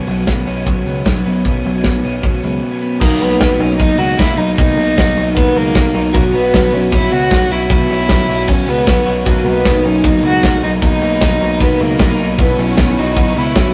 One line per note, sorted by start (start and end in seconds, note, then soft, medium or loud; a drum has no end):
0.00 0.17 B2 medium
0.00 1.45 B2 medium
0.00 0.17 F#3 medium
0.00 0.18 B3 medium
0.00 0.16 C#4 medium
0.07 0.24 B1 medium
0.07 0.67 F#3 medium
0.07 open hi-hat medium
0.17 0.45 F#3 soft
0.17 0.46 B3 soft
0.17 0.47 C#4 medium
0.27 0.44 B1 medium
0.27 0.86 B3 medium
0.27 kick loud
0.27 snare medium
0.27 closed hi-hat medium
0.45 0.63 B1 medium
0.45 0.76 B2 medium
0.45 0.76 F#3 medium
0.45 0.76 B3 medium
0.45 2.02 C#4 medium
0.45 0.74 C#4 medium
0.45 open hi-hat medium
0.66 0.83 B1 medium
0.66 1.06 F#3 medium
0.66 kick loud
0.66 closed hi-hat medium
0.76 1.18 F#3 soft
0.76 1.16 B3 soft
0.76 1.14 C#4 soft
0.86 1.02 C#2 medium
0.86 1.26 B3 medium
0.86 open hi-hat medium
1.05 1.22 B1 medium
1.05 1.65 F#3 medium
1.05 kick loud
1.05 snare loud
1.05 closed hi-hat medium
1.15 1.44 F#3 soft
1.15 1.45 B3 medium
1.15 1.45 C#4 medium
1.25 1.42 B1 medium
1.25 1.84 B3 medium
1.25 open hi-hat medium
1.44 1.61 B1 medium
1.44 1.74 B2 medium
1.44 3.00 B2 medium
1.44 1.75 F#3 medium
1.44 1.74 B3 medium
1.44 1.73 C#4 medium
1.44 kick loud
1.44 closed hi-hat medium
1.64 1.81 B1 medium
1.64 2.22 F#3 medium
1.64 open hi-hat medium
1.74 2.02 F#3 soft
1.74 2.02 B3 soft
1.74 2.03 C#4 medium
1.84 2.01 B1 loud
1.84 2.43 B3 medium
1.84 kick loud
1.84 snare medium
1.84 closed hi-hat medium
2.01 2.21 B1 medium
2.01 2.32 B2 medium
2.01 2.33 F#3 medium
2.01 2.32 B3 medium
2.01 3.05 C#4 medium
2.01 2.30 C#4 medium
2.01 open hi-hat medium
2.23 2.40 B1 medium
2.23 2.62 F#3 medium
2.23 kick loud
2.23 closed hi-hat medium
2.31 2.73 F#3 soft
2.31 2.72 B3 soft
2.31 2.69 C#4 soft
2.43 2.60 C#2 medium
2.43 2.82 B3 soft
2.43 open hi-hat medium
2.62 3.24 F#3 soft
2.71 3.00 F#3 soft
2.71 3.02 B3 medium
2.71 3.01 C#4 medium
2.82 3.20 B3 medium
3.00 3.17 B1 loud
3.00 3.30 B2 medium
3.00 4.56 B2 medium
3.00 3.31 F#3 medium
3.00 3.22 A#3 loud
3.00 3.29 A#3 medium
3.00 3.38 D#4 loud
3.00 3.28 D#4 medium
3.00 kick loud
3.00 crash loud
3.21 3.37 B1 loud
3.21 3.30 G#3 medium
3.21 3.63 B3 loud
3.21 open hi-hat medium
3.29 3.51 F#3 medium
3.29 3.79 A#3 medium
3.29 3.50 A#3 medium
3.29 3.49 D#4 medium
3.39 3.57 B1 loud
3.39 3.98 F#3 medium
3.39 6.22 D#4 loud
3.39 kick loud
3.39 snare loud
3.39 hi-hat pedal medium
3.39 ride medium
3.50 3.79 F#3 soft
3.50 3.79 A#3 medium
3.50 3.80 D#4 medium
3.60 3.76 B1 loud
3.60 3.79 C#4 loud
3.60 4.36 D#4 medium
3.60 open hi-hat medium
3.79 3.96 B1 medium
3.79 3.97 B2 medium
3.79 3.98 F#3 medium
3.79 3.89 G#3 medium
3.79 3.99 A#3 medium
3.79 4.00 D#4 loud
3.79 4.00 D#4 medium
3.79 kick loud
3.79 hi-hat pedal medium
3.79 ride medium
3.89 4.17 A#3 medium
3.98 4.15 C#2 medium
3.98 4.28 B2 medium
3.98 4.96 F#3 medium
3.98 4.29 F#3 medium
3.98 4.29 A#3 medium
3.98 4.27 D#4 medium
3.98 4.20 F#4 loud
3.98 open hi-hat medium
4.18 4.35 B1 loud
4.18 4.75 A#3 medium
4.18 4.39 E4 loud
4.18 kick loud
4.18 snare loud
4.18 hi-hat pedal medium
4.18 ride medium
4.28 4.58 F#3 soft
4.28 4.59 A#3 medium
4.28 4.58 D#4 medium
4.37 4.54 B1 loud
4.37 4.56 D#4 loud
4.37 5.15 D#4 medium
4.37 open hi-hat medium
4.56 4.74 B1 loud
4.56 6.13 B2 medium
4.56 4.87 B2 medium
4.56 4.88 F#3 medium
4.56 4.87 A#3 medium
4.56 5.31 D#4 loud
4.56 kick loud
4.56 hi-hat pedal medium
4.56 ride medium
4.61 4.86 D#4 medium
4.76 4.93 B1 loud
4.76 5.34 A#3 medium
4.76 open hi-hat loud
4.87 5.08 F#3 soft
4.87 5.07 A#3 medium
4.87 5.05 D#4 medium
4.96 5.14 B1 loud
4.96 5.55 F#3 medium
4.96 kick loud
4.96 snare loud
4.96 hi-hat pedal medium
4.96 ride medium
5.06 5.35 F#3 medium
5.06 5.36 A#3 medium
5.06 5.36 D#4 medium
5.16 5.33 B1 loud
5.16 5.93 D#4 medium
5.16 open hi-hat loud
5.35 5.53 B1 loud
5.35 5.54 B2 medium
5.35 5.56 F#3 medium
5.35 5.74 A#3 medium
5.35 5.56 A#3 medium
5.35 5.58 B3 loud
5.35 5.57 D#4 medium
5.35 kick loud
5.35 hi-hat pedal medium
5.35 ride medium
5.55 5.72 C#2 loud
5.55 5.85 B2 medium
5.55 6.76 F#3 medium
5.55 5.86 F#3 medium
5.55 5.95 A#3 loud
5.55 5.85 A#3 medium
5.55 5.84 D#4 medium
5.55 open hi-hat medium
5.75 5.91 B1 loud
5.75 6.18 A#3 medium
5.75 kick loud
5.75 snare loud
5.75 hi-hat pedal medium
5.75 ride medium
5.85 6.14 F#3 soft
5.85 6.15 A#3 medium
5.85 6.14 D#4 medium
5.94 6.10 B1 loud
5.94 6.18 D#4 medium
5.94 open hi-hat medium
6.13 6.31 B1 loud
6.13 7.69 B2 medium
6.13 6.44 E3 medium
6.13 6.23 A#3 loud
6.13 6.44 B3 medium
6.13 6.44 C#4 medium
6.13 9.02 F#4 loud
6.13 kick loud
6.13 hi-hat pedal medium
6.13 ride medium
6.17 6.43 F#4 medium
6.33 6.49 B1 loud
6.33 6.74 B3 loud
6.33 6.91 C#4 medium
6.33 open hi-hat medium
6.44 6.65 B3 soft
6.44 6.64 C#4 medium
6.44 6.62 F#4 medium
6.53 6.70 B1 loud
6.53 7.11 B3 medium
6.53 kick loud
6.53 snare loud
6.53 hi-hat pedal medium
6.53 ride medium
6.64 6.92 B3 medium
6.64 6.92 C#4 medium
6.64 6.93 F#4 medium
6.73 6.89 B1 loud
6.73 6.92 C#4 loud
6.73 6.82 E4 medium
6.73 open hi-hat medium
6.82 7.50 F#4 medium
6.92 7.08 B1 loud
6.92 7.10 E3 medium
6.92 7.11 B3 medium
6.92 7.30 C#4 medium
6.92 7.12 C#4 medium
6.92 7.14 E4 loud
6.92 7.13 F#4 medium
6.92 kick loud
6.92 hi-hat pedal medium
6.92 ride medium
7.11 7.27 C#2 medium
7.11 7.41 E3 medium
7.11 8.09 B3 medium
7.11 7.41 B3 medium
7.11 7.40 C#4 medium
7.11 7.53 F#4 loud
7.11 7.39 F#4 medium
7.11 open hi-hat medium
7.31 7.47 B1 loud
7.31 7.89 C#4 medium
7.31 kick loud
7.31 snare loud
7.31 hi-hat pedal medium
7.31 ride medium
7.40 7.70 B3 soft
7.40 7.70 C#4 medium
7.40 7.70 F#4 medium
7.50 7.67 B1 loud
7.50 7.70 E4 loud
7.50 8.28 F#4 medium
7.50 open hi-hat medium
7.69 7.86 B1 loud
7.69 9.24 B2 medium
7.69 7.99 E3 medium
7.69 8.00 B3 medium
7.69 7.99 C#4 medium
7.69 8.50 E4 loud
7.69 7.97 F#4 medium
7.69 kick loud
7.69 hi-hat pedal medium
7.69 ride medium
7.89 8.06 B1 loud
7.89 8.46 C#4 medium
7.89 open hi-hat medium
7.98 8.20 B3 soft
7.98 8.18 C#4 medium
7.98 8.16 F#4 medium
8.09 8.25 B1 loud
8.09 8.66 B3 medium
8.09 kick loud
8.09 snare loud
8.09 ride medium
8.18 8.47 B3 medium
8.18 8.49 C#4 medium
8.18 8.48 F#4 medium
8.28 8.45 B1 loud
8.28 8.38 E4 medium
8.28 open hi-hat medium
8.38 9.05 F#4 medium
8.47 8.64 B1 loud
8.47 8.66 E3 medium
8.47 8.67 B3 medium
8.47 8.85 C#4 medium
8.47 8.69 C#4 loud
8.47 8.68 C#4 medium
8.47 8.69 F#4 medium
8.47 kick loud
8.47 hi-hat pedal medium
8.47 ride medium
8.66 8.84 C#2 medium
8.66 8.97 E3 medium
8.66 9.44 B3 medium
8.66 9.07 B3 loud
8.66 8.97 B3 medium
8.66 8.97 C#4 medium
8.66 8.96 F#4 medium
8.66 open hi-hat medium
8.86 9.03 B1 loud
8.86 9.30 C#4 medium
8.86 kick loud
8.86 snare loud
8.86 hi-hat pedal medium
8.86 ride medium
8.97 9.27 B3 soft
8.97 9.27 C#4 medium
8.97 9.26 F#4 medium
9.06 9.22 B1 medium
9.06 12.03 F#4 medium
9.06 open hi-hat medium
9.25 9.42 B1 loud
9.25 10.80 B2 medium
9.25 9.55 B2 medium
9.25 9.56 F#3 medium
9.25 9.47 A#3 medium
9.25 9.55 A#3 medium
9.25 9.53 D#4 medium
9.25 9.62 F#4 loud
9.25 13.74 F#4 medium
9.25 12.35 D#5 medium
9.25 12.35 A#5 medium
9.25 13.74 B5 medium
9.25 kick loud
9.25 hi-hat pedal medium
9.25 ride medium
9.44 9.62 B1 loud
9.44 10.02 A#3 medium
9.44 9.86 B3 loud
9.44 open hi-hat medium
9.55 9.75 F#3 soft
9.55 9.74 A#3 medium
9.55 9.72 D#4 medium
9.64 9.82 B1 loud
9.64 10.22 F#3 medium
9.64 12.47 D#4 loud
9.64 kick loud
9.64 snare loud
9.64 hi-hat pedal medium
9.64 ride medium
9.73 10.02 F#3 soft
9.73 10.03 A#3 soft
9.73 10.03 D#4 medium
9.83 10.01 B1 loud
9.83 10.08 C#4 medium
9.83 10.61 D#4 medium
9.83 open hi-hat medium
10.02 10.20 B1 loud
10.02 10.20 B2 medium
10.02 10.21 F#3 medium
10.02 10.41 A#3 medium
10.02 10.22 A#3 medium
10.02 10.23 D#4 medium
10.02 kick loud
10.02 hi-hat pedal medium
10.02 ride medium
10.06 10.24 D#4 medium
10.21 10.39 C#2 medium
10.21 10.52 B2 medium
10.21 10.52 F#3 medium
10.21 11.21 F#3 medium
10.21 10.51 A#3 medium
10.21 10.50 D#4 medium
10.21 10.61 F#4 loud
10.21 open hi-hat medium
10.42 10.59 B1 loud
10.42 11.00 A#3 medium
10.42 kick loud
10.42 snare loud
10.42 hi-hat pedal medium
10.42 ride medium
10.51 10.81 F#3 soft
10.51 10.81 A#3 medium
10.51 10.82 D#4 medium
10.62 10.79 B1 loud
10.62 11.40 D#4 medium
10.62 10.72 D#4 medium
10.62 open hi-hat medium
10.81 10.98 B1 medium
10.81 11.11 B2 medium
10.81 12.38 B2 medium
10.81 11.12 F#3 medium
10.81 11.11 A#3 medium
10.81 11.63 D#4 loud
10.81 11.09 D#4 medium
10.81 kick loud
10.81 hi-hat pedal medium
10.81 ride medium
11.01 11.18 B1 loud
11.01 11.60 A#3 medium
11.01 open hi-hat loud
11.10 11.32 F#3 soft
11.10 11.30 A#3 medium
11.10 11.29 D#4 medium
11.21 11.37 B1 loud
11.21 11.80 F#3 medium
11.21 kick loud
11.21 snare loud
11.21 ride medium
11.30 11.59 F#3 medium
11.30 11.60 A#3 medium
11.30 11.60 D#4 medium
11.40 11.57 B1 loud
11.40 12.19 D#4 medium
11.40 open hi-hat medium
11.59 11.77 B1 loud
11.59 11.78 B2 medium
11.59 11.79 F#3 medium
11.59 12.00 A#3 medium
11.59 11.80 A#3 medium
11.59 11.82 B3 medium
11.59 11.80 D#4 medium
11.59 kick loud
11.59 hi-hat pedal medium
11.59 ride medium
11.79 11.96 C#2 loud
11.79 12.09 B2 medium
11.79 12.09 F#3 medium
11.79 13.74 F#3 medium
11.79 12.19 A#3 loud
11.79 12.09 A#3 medium
11.79 12.07 D#4 medium
11.79 open hi-hat medium
11.99 12.15 B1 loud
11.99 12.10 G#3 medium
11.99 kick loud
11.99 snare loud
11.99 ride medium
12.09 12.37 F#3 soft
12.09 12.43 A#3 medium
12.09 12.39 A#3 medium
12.09 12.38 D#4 medium
12.19 12.35 B1 loud
12.19 12.43 D#4 medium
12.19 open hi-hat medium
12.38 12.54 B1 loud
12.38 13.74 B2 medium
12.38 12.67 E3 medium
12.38 12.68 B3 medium
12.38 12.60 B3 medium
12.38 12.68 C#4 medium
12.38 13.52 E4 loud
12.38 12.67 F#4 medium
12.38 13.74 F#5 medium
12.38 13.74 C#6 medium
12.38 kick loud
12.38 hi-hat pedal medium
12.38 ride medium
12.58 12.74 B1 loud
12.58 13.00 C#4 loud
12.58 13.17 C#4 medium
12.58 open hi-hat medium
12.68 12.89 B3 medium
12.68 12.88 C#4 medium
12.68 12.86 F#4 medium
12.77 12.94 B1 loud
12.77 13.17 B3 medium
12.77 kick loud
12.77 snare loud
12.77 hi-hat pedal medium
12.77 ride medium
12.87 13.15 B3 medium
12.87 13.16 C#4 medium
12.87 13.16 F#4 medium
12.97 13.14 B1 medium
12.97 13.39 D#4 loud
12.97 13.74 F#4 medium
12.97 open hi-hat medium
13.15 13.33 B1 loud
13.15 13.33 E3 medium
13.15 13.34 B3 medium
13.15 13.27 B3 medium
13.15 13.35 C#4 medium
13.15 13.36 F#4 medium
13.15 kick loud
13.15 hi-hat pedal medium
13.15 ride medium
13.27 13.54 C#4 medium
13.34 13.52 C#2 medium
13.34 13.64 E3 medium
13.34 13.65 B3 medium
13.34 13.74 B3 medium
13.34 13.65 C#4 medium
13.34 13.74 E4 loud
13.34 13.63 F#4 medium
13.34 open hi-hat medium
13.55 13.72 B1 loud
13.55 13.74 C#4 medium
13.55 13.74 F#4 loud
13.55 kick loud
13.55 snare loud
13.55 hi-hat pedal medium
13.55 ride medium
13.65 13.74 B3 soft
13.65 13.74 C#4 medium
13.65 13.74 F#4 medium